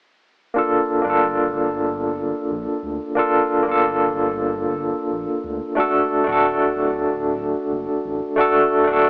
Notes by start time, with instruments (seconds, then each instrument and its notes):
0.54 tine electric piano A#3 D4 F4
0.58 tine electric piano A4
1.01 detuned saw bass G1, tine electric piano A#3 D4
1.07 tine electric piano F4 A4
1.53 detuned saw bass G1
2.51 detuned saw bass A#1
2.83 detuned saw bass D2
3.15 tine electric piano A#3 D4 F4
3.19 tine electric piano A4
3.63 detuned saw bass G1, tine electric piano A#3 D4
3.69 tine electric piano F4 A4
4.14 detuned saw bass G1
5.12 detuned saw bass A#1
5.44 detuned saw bass D2
5.75 tine electric piano A3 D4 F#4
5.80 tine electric piano A4
6.24 detuned saw bass D1, tine electric piano A3 D4
6.29 tine electric piano F#4 A4
6.74 detuned saw bass D1
7.72 detuned saw bass F#1
8.05 detuned saw bass A1
8.36 tine electric piano A3 D4 F#4
8.40 tine electric piano A4
8.84 tine electric piano A3 D4
8.89 detuned saw bass D1, tine electric piano F#4
8.93 tine electric piano A4